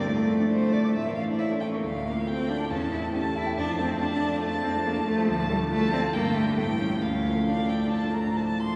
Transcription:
<<
  \new Staff \with { instrumentName = "Violin" } { \time 4/4 \key d \minor \tempo 4 = 136 d''4 c''8 d''8 e''8 f''8 e''8 g''8 | f''4 g''4 a''4 a''4 | a''4 a''4 a''2 | a''4 a''4 g''4 g''4 |
f''4 f''8 g''8 a''8 bes''8 a''8 c'''8 | }
  \new Staff \with { instrumentName = "Cello" } { \time 4/4 \key d \minor a2~ a16 bes16 cis'16 d'16 e'16 d'16 cis'16 bes16 | a8 bes8 c'8 d'8 cis'8 e'8 cis'8 e'8 | d'8 c'8 d'4 a8 c'8 bes8 a8 | f8 g8 a8 c'8 bes8 a8 a8 cis'8 |
cis'4 d'2 r4 | }
  \new Staff \with { instrumentName = "Grand piano" } { \time 4/4 \key d \minor a,16 a16 f16 d'16 d''16 f'16 d''16 d'''16 a,16 e16 a16 e'16 cis''16 a'16 e''16 cis'''16 | d,16 a,16 a16 f'16 a'16 f'16 f''16 a''16 e,16 e16 a16 e'16 g'16 a'16 e''16 g''16 | f,16 f16 a16 d'16 f'16 a'16 d''16 f''16 d''16 a'16 d'16 f16 a16 f16 a16 f16 | d,16 a,16 a16 d'16 f'16 a'16 d''16 f''16 g,16 d16 g16 d'16 a,16 e16 g16 cis'16 |
d,16 a,16 f16 a16 f'16 a16 a'16 f''16 a'16 f'16 a16 a,16 f16 a,16 f16 a,16 | }
>>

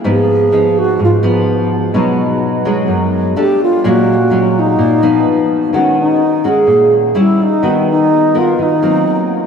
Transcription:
<<
  \new Staff \with { instrumentName = "Alto flute" } { \time 4/4 \key ees \minor \tempo 4 = 127 aes'4. ges'8 f'8 r4. | r2. g'8 f'8 | ges'4. ees'2~ ees'16 r16 | des'8 ees'4 aes'4 r8 fes'8 ees'8~ |
ees'8 ees'4 f'8 ees'4. r8 | }
  \new Staff \with { instrumentName = "Nylon-string guitar" } { \time 4/4 \key ees \minor << { <f ces' ees'>4 <f ces' ees'>4. <f ces' ees'>4. | <fis gis dis'>4. <fis gis dis'>4. <a d' g'>4 | <ges aes des'>8 r8 <ges aes des'>4 r8 <f ces' ees'>4. | <aes des' ges'>4 r8 <aes des' ges'>4. <g des' fes'>8 r8 |
<ces' ges' bes'>4 r8 <ces' ges' bes'>4 <ges bes c'>4. | } \\ { aes,2 aes,2 | b,2 fis,4 r4 | bes,2 bes,4 r4 | ees2 bes,4 r4 |
ees2 ees4 r4 | } >> }
>>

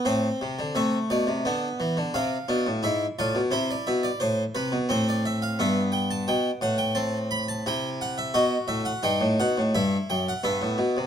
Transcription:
<<
  \new Staff \with { instrumentName = "Harpsichord" } { \time 4/4 \key a \minor \tempo 4 = 87 << { c''4 e''8 d''4. f''4 | e''8 d''8 c''16 d''16 e''16 d''16 c''8 b'8 c''16 d''16 e''16 f''16 | e''8 g''16 a''16 g''8 fis''16 g''16 a''8 b''16 a''16 g''8 fis''16 e''16 | dis''8 e''16 fis''16 g''8 fis''8 e''8 g''16 fis''16 e''4 | } \\ { c'4 a4 b4 c'8 d'8 | e'8 f'8 e'2 c'4 | b2 c'4 e'4 | fis'4 dis'4 e'4 b4 | } >> }
  \new Staff \with { instrumentName = "Harpsichord" } { \clef bass \time 4/4 \key a \minor a,8 c16 d16 c8 b,16 c16 d8 e16 d16 c8 b,16 a,16 | gis,8 a,16 b,16 c8 b,8 a,8 c16 b,16 a,4 | g,4 b,8 a,4. c4 | b,8 a,8 g,16 a,16 b,16 a,16 g,8 fis,8 g,16 a,16 b,16 c16 | }
>>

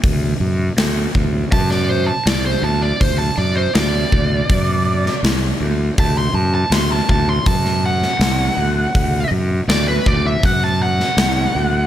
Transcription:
<<
  \new Staff \with { instrumentName = "Lead electric guitar" } { \time 4/4 \key d \mixolydian \tempo 4 = 81 r2 a''16 d''16 c''16 a''16 d''16 c''16 a''16 d''16 | c''16 a''16 d''16 c''16 d''2 r4 | a''16 c'''16 a''16 a''16 c'''16 a''16 a''16 c'''16 a''8 fis''4.~ | fis''8 r8 d''16 b'16 d''16 e''16 fis''16 a''16 fis''4. | }
  \new Staff \with { instrumentName = "Fingered electric bass" } { \clef bass \time 4/4 \key d \mixolydian d,8 fis,8 d,8 d,8 fis,4 c,8 d,8 | d,8 fis,8 d,8 d,8 fis,4 c,8 d,8 | d,8 fis,8 d,8 d,8 fis,4 c,8 d,8 | d,8 fis,8 d,8 d,8 fis,4 c,8 d,8 | }
  \new DrumStaff \with { instrumentName = "Drums" } \drummode { \time 4/4 <hho bd>4 <hho sn>8 bd8 <hho bd>16 sn8. <hho sn>4 | <hho bd>4 <hho sn>8 bd8 <hho bd>8. sn16 <hho sn>4 | <hho bd>4 <hho sn>8 bd8 <hho bd>16 sn8 sn16 <hho sn>4 | <hho bd>4 <hho sn>8 bd8 <hho bd>8. sn16 <hho sn>4 | }
>>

